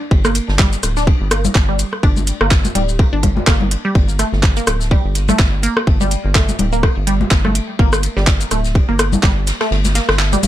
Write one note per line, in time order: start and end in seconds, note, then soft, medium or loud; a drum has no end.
0.11 0.40 G1 loud
0.11 kick loud
0.11 ride medium
0.25 0.27 A#3 medium
0.25 cross-stick medium
0.25 shaker soft
0.35 closed hi-hat loud
0.35 ride medium
0.35 shaker soft
0.48 0.76 G1 loud
0.48 snare medium
0.59 0.62 G3 medium
0.59 kick loud
0.59 snare loud
0.59 clap loud
0.59 ride medium
0.73 closed hi-hat soft
0.73 ride soft
0.73 shaker soft
0.83 1.12 D1 medium
0.83 cross-stick soft
0.83 closed hi-hat medium
0.83 ride medium
0.83 shaker soft
0.97 0.99 D4 medium
0.97 snare soft
0.97 shaker soft
1.07 kick loud
1.07 ride loud
1.21 1.49 G1 medium
1.31 1.34 A#3 medium
1.31 cross-stick medium
1.31 closed hi-hat loud
1.31 ride medium
1.31 shaker soft
1.45 low conga medium
1.45 shaker soft
1.55 1.84 G1 loud
1.55 kick loud
1.55 snare loud
1.55 clap medium
1.55 ride medium
1.69 1.71 G3 medium
1.79 closed hi-hat medium
1.79 ride medium
1.79 shaker soft
1.93 cross-stick soft
2.03 2.32 G1 loud
2.03 2.06 D4 medium
2.03 kick loud
2.03 ride loud
2.17 high conga medium
2.17 shaker soft
2.27 closed hi-hat loud
2.27 ride medium
2.27 shaker soft
2.41 2.69 G1 medium
2.41 2.43 A#3 medium
2.41 cross-stick medium
2.50 kick loud
2.50 snare loud
2.50 clap medium
2.50 ride medium
2.65 closed hi-hat soft
2.65 high conga medium
2.65 shaker soft
2.75 3.04 D1 medium
2.75 2.78 G3 medium
2.75 closed hi-hat loud
2.75 ride medium
2.75 low conga medium
2.89 shaker soft
2.99 kick loud
2.99 cross-stick soft
2.99 ride medium
3.13 3.41 G1 medium
3.13 3.15 D4 medium
3.23 kick medium
3.23 closed hi-hat medium
3.23 ride medium
3.23 low conga medium
3.37 high conga medium
3.46 3.76 G1 loud
3.46 3.50 A#3 medium
3.46 kick loud
3.46 cross-stick medium
3.46 snare loud
3.46 clap medium
3.46 ride medium
3.61 low conga medium
3.71 closed hi-hat medium
3.71 ride medium
3.85 3.87 G3 medium
3.95 4.24 G1 loud
3.95 kick loud
3.95 ride medium
4.09 shaker soft
4.19 4.23 A3 medium
4.19 cross-stick soft
4.19 closed hi-hat medium
4.19 ride medium
4.19 shaker soft
4.33 4.61 G1 loud
4.33 snare soft
4.43 kick loud
4.43 snare loud
4.43 clap medium
4.43 ride medium
4.57 4.59 A#3 medium
4.57 closed hi-hat soft
4.57 ride soft
4.57 shaker soft
4.67 4.96 D1 medium
4.67 cross-stick medium
4.67 closed hi-hat medium
4.67 ride medium
4.67 shaker soft
4.81 snare soft
4.81 shaker soft
4.91 4.94 G3 medium
4.91 kick loud
4.91 ride medium
5.05 5.32 G1 medium
5.15 closed hi-hat medium
5.15 ride medium
5.15 shaker soft
5.29 5.32 A3 medium
5.29 cross-stick soft
5.29 low conga medium
5.29 shaker soft
5.39 5.68 G1 loud
5.39 kick loud
5.39 snare loud
5.39 clap medium
5.39 ride medium
5.63 5.66 A#3 medium
5.63 closed hi-hat medium
5.63 ride medium
5.63 shaker soft
5.77 cross-stick medium
5.87 6.16 G1 loud
5.87 kick loud
5.87 ride medium
6.01 6.03 G3 medium
6.01 high conga soft
6.01 shaker soft
6.11 closed hi-hat medium
6.11 ride medium
6.11 shaker soft
6.25 6.52 G1 medium
6.35 6.39 A3 medium
6.35 kick loud
6.35 cross-stick soft
6.35 snare loud
6.35 clap medium
6.35 ride medium
6.49 closed hi-hat soft
6.49 high conga medium
6.49 shaker soft
6.59 6.88 D1 medium
6.59 closed hi-hat medium
6.59 ride medium
6.59 low conga medium
6.73 6.75 A#3 medium
6.73 shaker soft
6.83 kick loud
6.83 cross-stick medium
6.83 ride medium
6.97 7.25 G1 medium
7.07 7.10 G3 medium
7.07 closed hi-hat medium
7.07 ride medium
7.21 high conga medium
7.31 7.60 G1 loud
7.31 kick loud
7.31 snare loud
7.31 clap medium
7.31 ride medium
7.45 7.48 A3 medium
7.45 cross-stick soft
7.45 low conga medium
7.55 closed hi-hat medium
7.55 ride medium
7.79 8.08 G1 loud
7.79 7.82 A#3 medium
7.79 kick loud
7.79 ride medium
7.93 cross-stick medium
7.93 shaker soft
8.03 closed hi-hat medium
8.03 ride medium
8.03 shaker soft
8.16 8.45 G1 loud
8.16 8.19 G3 medium
8.16 snare medium
8.27 kick loud
8.27 snare loud
8.27 clap medium
8.27 ride medium
8.41 closed hi-hat soft
8.41 ride soft
8.41 shaker soft
8.51 8.80 D1 medium
8.51 8.55 A3 medium
8.51 cross-stick soft
8.51 closed hi-hat medium
8.51 ride medium
8.51 shaker medium
8.65 snare medium
8.65 shaker soft
8.75 kick loud
8.75 ride medium
8.89 9.17 G1 medium
8.89 8.91 A#3 medium
8.99 cross-stick medium
8.99 closed hi-hat medium
8.99 ride medium
8.99 shaker soft
9.13 low conga medium
9.13 shaker medium
9.23 9.52 G1 loud
9.23 9.26 G3 medium
9.23 kick loud
9.23 snare loud
9.23 clap medium
9.23 ride medium
9.47 snare loud
9.47 closed hi-hat medium
9.47 ride medium
9.47 shaker soft
9.60 9.64 A3 medium
9.60 cross-stick soft
9.60 snare loud
9.60 ride medium
9.71 10.00 G1 loud
9.71 snare loud
9.71 ride medium
9.84 snare loud
9.84 ride medium
9.84 high conga soft
9.84 shaker soft
9.95 9.98 A#3 medium
9.95 snare loud
9.95 closed hi-hat medium
9.95 ride medium
9.95 shaker soft
10.09 10.37 G1 loud
10.09 cross-stick medium
10.09 snare loud
10.09 ride medium
10.19 snare loud
10.19 clap loud
10.19 ride loud
10.33 10.35 G3 medium
10.33 closed hi-hat soft
10.33 high conga medium
10.33 shaker soft
10.43 10.47 D1 medium
10.43 closed hi-hat medium
10.43 ride medium
10.43 low conga medium
10.43 shaker medium